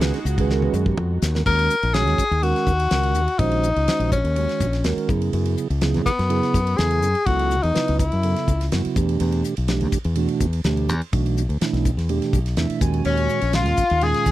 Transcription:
Already playing: C#2 D#3 G#3 B3 C#4 D#4 F#4 G#4
0.01 B4, snare, ride
0.14 D#4, snare, ride
0.25 C#2 F#4, hi-hat pedal
0.38 D#3 G#3 C#4 F#4 G#4 B4, kick, ride
0.50 A#4, snare
0.62 B4, high tom
0.73 F#2 G#4, hi-hat pedal
0.86 G4, kick
0.97 F2 F#4, mid tom
1.22 D#2, snare, hi-hat pedal
1.35 D#3 G#3 C#4 F#4 A#4, snare
1.45 D#2 D#3 G#3 C#4 F#4 A#4, kick, crash
1.59 ride
1.70 hi-hat pedal
1.83 A#1, ride
1.93 D#3 G#3 C#4 F#4 G#4 C#5, snare, ride
2.07 D#2, snare, ride
2.18 kick, hi-hat pedal
2.31 D#2, ride
2.42 D#3 G#3 C#4 F#4 A#4, ride
2.56 snare, ride
2.67 D#2, kick, hi-hat pedal
2.80 ride
2.91 C#2 D#3 G#3 C#4 F#4 A#4, snare, ride
3.03 ride
3.14 D#2, hi-hat pedal
3.28 ride
3.39 A#1 D#3 G#3 C#4 D#4 F#4 C5, kick, ride
3.51 ride
3.63 hi-hat pedal
3.76 C#2, ride
3.87 D#3 G#3 C#4 F#4 C5, muted fingered electric bass stroke, snare, ride
4.00 A#1, ride
4.12 C#4, kick, hi-hat pedal
4.24 D#2, ride
4.36 D#3 G#3 C#4 F#4 C#5, ride
4.49 snare, ride
4.60 A#1, kick, hi-hat pedal
4.73 snare, ride
4.84 D#2 D#3 G#3 C#4 F#4 A#4, snare, ride
4.97 muted fingered electric bass stroke, ride
5.08 F#2 C#3 F#3 B3 E4 G#4, kick, hi-hat pedal
5.22 ride
5.33 F#2, ride
5.45 ride
5.57 hi-hat pedal
5.70 C#2, ride
5.81 C#3 F#3 B3 E4 G#4, snare, ride
5.94 F#2, snare, ride
6.06 B3, muted fingered electric bass stroke, kick, hi-hat pedal
6.19 F#2, snare, ride
6.29 C#3 F#3 B3 E4 G#4, ride
6.43 snare, ride
6.54 F#2, kick, hi-hat pedal
6.67 ride
6.77 E2 C#3 F#3 B3 E4 G#4 A4, snare, ride
6.91 ride
7.02 F#2, hi-hat pedal
7.15 ride
7.26 C#2 C#3 F#3 B3 E4 F#4 A4, kick, ride
7.39 ride
7.51 hi-hat pedal
7.63 E2 D#4, ride
7.73 C#3 F#3 B3 E4 B4, muted fingered electric bass stroke, snare, ride
7.88 C#2, ride
7.99 E4, kick, hi-hat pedal
8.12 F#2, ride
8.23 C#3 F#3 B3 E4 A4, ride
8.36 snare, ride
8.48 C#2, kick, hi-hat pedal
8.61 snare, ride
8.72 F#2 C#3 F#3 B3 E4 F#4, snare, ride
8.85 muted fingered electric bass stroke, ride
8.96 E2 B2 E3 A3 D4 G4, kick, hi-hat pedal
9.09 ride
9.20 E2, ride
9.32 ride
9.44 hi-hat pedal
9.57 B1, ride
9.68 B2 E3 A3 D4 G4, snare, ride
9.81 E2, ride
9.92 kick, hi-hat pedal
10.04 E2, ride
10.16 B2 E3 A3 D4 F#4, ride
10.28 ride
10.40 E2, kick, hi-hat pedal
10.53 ride
10.64 D2 B2 E3 A3 D4 G4, snare, ride
10.77 ride
10.89 E2, hi-hat pedal
11.01 ride
11.12 B1 B2 E3 A3 D4 F#4, kick, ride
11.26 ride
11.37 hi-hat pedal
11.49 D2, ride
11.61 B2 E3 A3 D4 E4, muted fingered electric bass stroke, snare, ride
11.73 B1, snare, ride
11.85 kick, hi-hat pedal
11.97 E2, snare, ride
12.09 B2 E3 A3 D4 G4, ride
12.22 snare, ride
12.33 B1, kick, hi-hat pedal
12.46 snare, ride
12.57 E2 B2 E3 A3 D4 E4 E5, snare, ride
12.70 muted fingered electric bass stroke, ride
12.81 D#2 A#2 D#3 G#3 C#4 F#4 G#5, kick, hi-hat pedal
12.93 ride
13.05 D#2 C#4, ride
13.17 ride
13.29 hi-hat pedal
13.41 A#1, ride
13.53 A#2 D#3 G#3 C#4 F4, snare, ride
13.66 D#2, snare, ride
13.77 kick, hi-hat pedal
13.90 D#2, ride
14.01 A#2 D#3 G#3 C#4 F4 G#4, ride
14.05 G#4
14.14 snare, ride
14.26 D#2, kick, hi-hat pedal

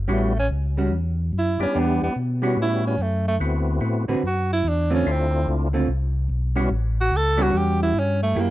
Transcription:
0.08 A1 G3 B3 C#4 E4 F#4
0.12 A3
0.39 C#4
0.51 C#2
0.77 G3 C#4 F#4
0.91 E2
1.33 F#2
1.38 E4
1.59 F#2 G3 B3 C#4 D4 E4 G4
1.75 E2 E3 B3 D4 G4
1.79 B3
2.02 E2 B3
2.16 B2
2.42 G3 B3 C#4 E4 F#4
2.57 A2
2.62 E4
2.87 C#4
2.99 F#2 A3
3.28 A3
3.40 D2 A3 B3 C4 E4 F#4
3.81 A2 A3 B3 C4 E4 F#4
4.08 A2 D3 C4 F#4 B4
4.23 F#2 F#4
4.53 E4
4.64 E2
4.68 D4
4.90 D3 A3 C4 F4
4.94 C#4
5.06 D2 A3 C4 D4 E4 F4
5.11 C4
5.47 C#2
5.73 D3 A3 C4 F4
5.88 C2
6.29 B1
6.56 G3 B3 C#4 E4 F#4
6.71 A1
7.01 F#4
7.11 C#2
7.16 A4
7.37 G3 B3 C#4 E4 F#4
7.42 F#4
7.53 E2
7.57 G4
7.82 E4
7.94 G2
7.99 C#4
8.23 A3
8.35 F#2 F#3 A#3 E4 G4
8.41 A#3

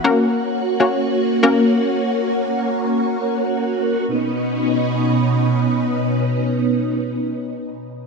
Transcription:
Already playing: F#4
0.04 A#3 C#4 F#4 A#4
0.80 A#3 C#4 F#4 C#5
1.43 A#3 C#4 F#4 A#4
4.08 B2 B3 C#4 D#4

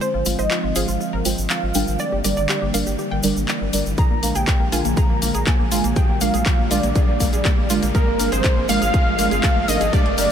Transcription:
Already playing: G#3 C4 F4 C5 G#5, riser
0.01 F3 C5, shaker
0.14 G#1 F4
0.25 G#1 G#3 F4 C5 F5, open hi-hat, shaker
0.39 G#1 C5 D#5, shaker
0.51 F4, clap, shaker
0.64 G#1 F4
0.75 G#1 G#3 F4 G#4 C5 F5, open hi-hat, shaker
0.88 G#1 F4, shaker
1.00 F4, shaker
1.13 G#1 A#4
1.25 G#1 G#3 F4 C5 G5, open hi-hat, shaker
1.38 G#1, shaker
1.50 F5, clap, shaker
1.63 G#1
1.74 G#1 G3 D4 A#4 G5, open hi-hat, shaker
1.87 G#1, shaker
1.99 D3 G3 A#3 D5, shaker
2.12 G1 G4
2.24 G1 G3 D4 G4 A#4 D5, open hi-hat, shaker
2.37 G1 D5, shaker
2.49 G4, clap, shaker
2.62 G1 G4
2.74 G1 G3 D4 A#4 D5 F5, open hi-hat, shaker
2.86 G1 G4, shaker
2.98 G4, shaker
3.11 G#1 G5
3.23 G1 G3 D4 A#4 D5, open hi-hat, shaker
3.36 G#1, shaker
3.48 clap, shaker
3.61 G1
3.73 G1 G3 D4 A#4 D5, open hi-hat, shaker
3.86 G1, shaker
3.98 G#3 A#3 G#4 A#5, kick, closed hi-hat, shaker
4.11 A#1 A#3
4.23 A#1 G#3 A#3 D4 A#4 F5, open hi-hat, shaker
4.35 A#1 G#4 G5, closed hi-hat, shaker
4.47 A#3, kick, clap, closed hi-hat, shaker
4.60 A#1 A#3
4.72 A#1 G#3 D4 F4 A#4 F5 G#5, open hi-hat, shaker
4.85 A#1 A#3, closed hi-hat, shaker
4.97 G#4 A#5, kick, closed hi-hat, shaker
5.10 A#1 A#3
5.22 A#1 G#3 A#3 D4 A#4 F5, open hi-hat, shaker
5.34 A#1 G#4, closed hi-hat, shaker
5.46 A#3 G#5, kick, clap, closed hi-hat, shaker
5.59 A#1 A#3
5.71 G#1 G#3 D4 F4 A#4 F5, open hi-hat, shaker
5.84 A#1 A#3, closed hi-hat, shaker
5.96 G3 G#4 G5, kick, closed hi-hat, shaker
6.09 A#1 A#3
6.21 A#1 G#3 A#3 D4 A#4 F5, open hi-hat, shaker
6.34 A#1 G#4, closed hi-hat, shaker
6.46 A#3, kick, clap, closed hi-hat, shaker
6.59 A#1 A#3
6.71 A#1 G#3 D4 F4 A#4 D5 F5, open hi-hat, shaker
6.83 A#1 A#3, closed hi-hat, shaker
6.95 G#4, kick, closed hi-hat, shaker
7.08 A#1 A#3
7.20 A#1 G#3 A#3 D4 A#4 F5, kick, open hi-hat, shaker
7.33 A#1 G#4, closed hi-hat, shaker
7.45 A#3, kick, clap, closed hi-hat, shaker
7.58 A#1 A#3
7.70 G#1 G#3 D4 F4 A#4 F5, open hi-hat, shaker
7.83 A#1 A#3, closed hi-hat, shaker
7.95 F3 G#3 C4 G#4 A#4, kick, closed hi-hat, shaker
8.07 G#1 A#3
8.19 G#1 G#3 A#3 D4 A#4 F5, open hi-hat, shaker
8.32 G#1 G#4 C5, closed hi-hat, shaker
8.44 G#4, kick, clap, closed hi-hat, shaker
8.57 G#1 A#3
8.69 G#1 G#3 A#3 D4 A#4 F5, open hi-hat, shaker
8.82 G#1 G#4, closed hi-hat, shaker
8.94 G#4, kick, closed hi-hat, shaker
9.06 G#1 A#3
9.19 G#1 G#3 A#3 D4 A#4 F5, open hi-hat, shaker
9.31 G#1 G#4, closed hi-hat, shaker
9.43 G#4, kick, clap, closed hi-hat, shaker
9.56 G#1 A#3
9.68 G#1 G#3 A#3 D4 A#4 D#5 F5, open hi-hat, shaker
9.81 G#1 G#4, closed hi-hat, shaker
9.93 D3 G3 A#3 D4 G4 A#4 D5 F5, kick, closed hi-hat, shaker
10.06 G1 A#3, closed hi-hat
10.18 G1 G3 D4 G4 A#4 F5, open hi-hat, shaker

